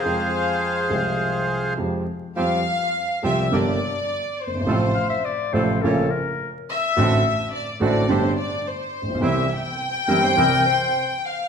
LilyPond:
<<
  \new Staff \with { instrumentName = "Violin section" } { \time 4/4 \key f \minor \tempo 4 = 104 f''2. r4 | \key f \major f''4. e''8 d''4. c''8~ | c''4. r2 e''8~ | e''4 d''8 d''8 c''8 d''8 c''4 |
e''8 g''2. f''8 | }
  \new Staff \with { instrumentName = "Bandoneon" } { \time 4/4 \key f \minor <aes' c'' f''>2. r4 | \key f \major r1 | r1 | r1 |
r1 | }
  \new Staff \with { instrumentName = "Clarinet" } { \time 4/4 \key f \minor r1 | \key f \major r1 | r8 f''16 e''16 d''8 c''8 a'8 bes'8. r8. | r1 |
r4. bes'16 c''16 bes'8 c''8. r8. | }
  \new Staff \with { instrumentName = "Bandoneon" } { \time 4/4 \key f \minor r1 | \key f \major <c' f' g'>8 r4 <c' f' g'>8 <bes d' g'>8 r4. | <a c' f'>8 r4 <a c' f'>8 <bes des' f'>8 r4. | <a, c' d' fis'>8 r4 <a, c' d' fis'>8 <c' d' g'>8 r4. |
<c' e' g'>8 r4 <c' e' g'>8 <c' e' g'>8 r4. | }
  \new Staff \with { instrumentName = "Upright piano" } { \clef bass \time 4/4 \key f \minor <f, f aes c' g''>4. <c, c f aes c' g''>4. <f, f aes c' g'>8 r8 | \key f \major <f, f g c' g'>8 r4 <c, c f g c' g'>8 <g,, g, d g bes g'>8 r4 r32 ges,,32 g,,32 aes,,32 | <a,, a, c f a f'>8 r4 <a,, a, c f a f'>8 <bes,, bes, des f bes f'>8 r4. | <a,, a, d a c' fis'>8 r4 <a,, a, d a c' fis'>8 <g,, g, d g c' g'>8 r4 r32 a,,32 bes,,32 b,,32 |
<c, c e g c' g'>8 r4 <g,, g, e g c' g'>8 <c, c e g c' g'>8 r4. | }
>>